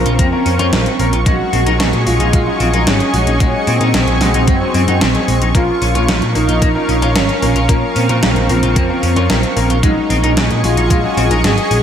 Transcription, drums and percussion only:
0.06 closed hi-hat
0.19 kick, closed hi-hat
0.46 open hi-hat
0.59 closed hi-hat
0.73 snare, closed hi-hat
0.86 closed hi-hat
0.99 open hi-hat
1.13 closed hi-hat
1.26 kick, closed hi-hat
1.53 open hi-hat
1.67 closed hi-hat
1.80 snare, closed hi-hat
1.93 closed hi-hat
2.07 open hi-hat
2.20 closed hi-hat
2.33 kick, closed hi-hat
2.60 open hi-hat
2.74 closed hi-hat
2.87 snare, closed hi-hat
3.00 closed hi-hat
3.14 open hi-hat
3.27 closed hi-hat
3.40 kick, closed hi-hat
3.67 open hi-hat
3.81 closed hi-hat
3.94 snare, closed hi-hat
4.08 closed hi-hat
4.21 snare, open hi-hat
4.34 closed hi-hat
4.47 kick, closed hi-hat
4.74 open hi-hat
4.88 closed hi-hat
5.01 snare, closed hi-hat
5.15 closed hi-hat
5.28 open hi-hat
5.42 closed hi-hat
5.55 kick, closed hi-hat
5.82 open hi-hat
5.95 closed hi-hat
6.09 snare, closed hi-hat
6.22 closed hi-hat
6.35 open hi-hat
6.49 closed hi-hat
6.62 kick, closed hi-hat
6.89 open hi-hat
7.02 closed hi-hat
7.16 snare, closed hi-hat
7.29 closed hi-hat
7.42 open hi-hat
7.56 closed hi-hat
7.69 kick, closed hi-hat
7.96 open hi-hat
8.09 closed hi-hat
8.23 snare, closed hi-hat
8.36 closed hi-hat
8.49 open hi-hat
8.63 closed hi-hat
8.76 kick, closed hi-hat
9.03 open hi-hat
9.16 closed hi-hat
9.30 snare, closed hi-hat
9.43 closed hi-hat
9.57 open hi-hat
9.70 closed hi-hat
9.83 kick, closed hi-hat
10.10 open hi-hat
10.24 closed hi-hat
10.37 snare, closed hi-hat
10.51 closed hi-hat
10.64 open hi-hat
10.77 closed hi-hat
10.90 kick, closed hi-hat
11.17 open hi-hat
11.31 closed hi-hat
11.44 snare, closed hi-hat
11.58 closed hi-hat
11.71 open hi-hat

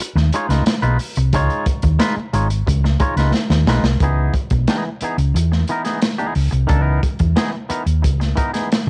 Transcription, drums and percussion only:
0.00 closed hi-hat
0.17 snare
0.33 closed hi-hat
0.50 snare, closed hi-hat
0.66 snare, closed hi-hat
0.82 closed hi-hat
0.99 open hi-hat
1.16 closed hi-hat
1.33 kick, closed hi-hat
1.50 closed hi-hat
1.66 kick, closed hi-hat
1.82 kick, closed hi-hat
2.00 snare, closed hi-hat
2.34 closed hi-hat
2.50 closed hi-hat
2.67 kick, closed hi-hat
2.85 snare
3.00 kick, closed hi-hat
3.17 snare, closed hi-hat
3.34 snare
3.50 snare
3.67 snare
3.84 snare
4.00 kick, closed hi-hat
4.34 kick, closed hi-hat
4.50 kick, closed hi-hat
4.68 snare, closed hi-hat
5.01 closed hi-hat
5.18 closed hi-hat
5.36 closed hi-hat
5.52 snare
5.68 closed hi-hat
5.85 snare, closed hi-hat
6.02 snare, closed hi-hat
6.19 closed hi-hat
6.35 open hi-hat
6.52 closed hi-hat
6.69 kick, closed hi-hat
7.03 kick, closed hi-hat
7.19 kick, closed hi-hat
7.36 snare, closed hi-hat
7.70 closed hi-hat
7.87 closed hi-hat
8.04 kick, closed hi-hat
8.21 snare, closed hi-hat
8.37 kick, closed hi-hat
8.54 snare, closed hi-hat
8.72 snare, closed hi-hat

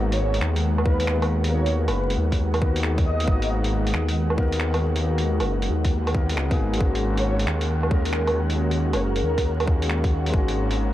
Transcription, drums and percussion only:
0.12 closed hi-hat
0.34 closed hi-hat
0.41 finger snap
0.56 closed hi-hat
0.78 low woodblock
0.85 kick
1.00 closed hi-hat
1.07 finger snap
1.22 closed hi-hat, low woodblock
1.44 closed hi-hat
1.66 closed hi-hat
1.88 closed hi-hat, low woodblock
2.10 closed hi-hat
2.32 kick, closed hi-hat
2.54 closed hi-hat, low woodblock
2.62 kick
2.76 closed hi-hat
2.83 finger snap
2.98 kick, closed hi-hat
3.20 closed hi-hat
3.28 kick
3.42 closed hi-hat
3.64 closed hi-hat
3.87 closed hi-hat
3.94 finger snap
4.08 closed hi-hat
4.30 low woodblock
4.38 kick
4.52 closed hi-hat
4.60 finger snap
4.74 closed hi-hat, low woodblock
4.96 closed hi-hat
5.18 closed hi-hat
5.40 closed hi-hat, low woodblock
5.62 closed hi-hat
5.85 kick, closed hi-hat
6.07 closed hi-hat, low woodblock
6.14 kick
6.29 closed hi-hat
6.37 finger snap
6.51 kick, closed hi-hat
6.74 closed hi-hat
6.81 kick
6.95 closed hi-hat
7.18 closed hi-hat
7.39 closed hi-hat
7.47 finger snap
7.61 closed hi-hat
7.83 low woodblock
7.91 kick
8.05 closed hi-hat
8.13 finger snap
8.27 closed hi-hat, low woodblock
8.50 closed hi-hat
8.71 closed hi-hat
8.93 closed hi-hat, low woodblock
9.16 closed hi-hat
9.38 kick, closed hi-hat
9.60 closed hi-hat, low woodblock
9.67 kick
9.82 closed hi-hat
9.89 finger snap
10.04 kick, closed hi-hat
10.26 closed hi-hat
10.34 kick
10.48 closed hi-hat
10.71 closed hi-hat

